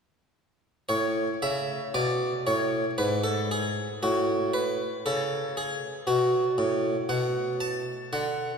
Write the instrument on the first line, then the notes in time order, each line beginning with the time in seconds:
harpsichord
0.89 A2 C#5
1.42 C#3 E5
1.94 B2 D5
2.47 A2 C#5
2.98 G#2 B4
3.24 A4
3.51 G#4
4.03 A2 F#4
4.54 B4
5.06 C#3 A4
5.57 G#4
6.07 B2 F#4
6.58 A2
7.09 B2 F#5
7.61 A5
8.13 D3 F#5